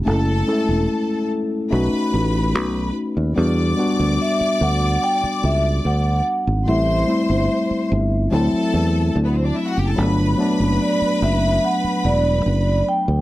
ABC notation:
X:1
M:4/4
L:1/16
Q:1/4=73
K:Edor
V:1 name="Vibraphone"
z16 | z4 e2 f2 g2 e2 f4 | e12 z4 | z4 d2 e2 f2 d4 g2 |]
V:2 name="String section"
[Aa]6 z2 [Bb]6 z2 | [dd']12- [dd']2 z2 | [=c=c']6 z2 [Aa]4 z/2 [B,B]/2 [=Cc]/2 [Dd]/2 [Ee]/2 [Ff]/2 [Gg]/2 [Aa]/2 | [Bb]12- [Bb]2 z2 |]
V:3 name="Tine electric piano"
[A,CEA]2 [^G,A,CEA]6 [A,C^DF]6 z2 | [G,B,DF]2 [G,B,DF]6 z8 | [G,A,=CE]2 [G,A,CE]6 [F,A,CE]6 z2 | [F,A,B,D]2 [F,A,B,D]6 z8 |]
V:4 name="Fingered electric bass" clef=bass
F,,,2 z E,,, z4 B,,, z A,,,2 B,,,2 z ^D,, | E,,2 z D,, z2 D,,2 z2 C,,2 D,,2 z ^G,,, | A,,,2 z G,,, z2 G,,,2 D,, z E,,2 D,,2 z F,,, | G,,,2 z F,,, z2 F,,,2 z2 E,,,2 F,,,2 z D,, |]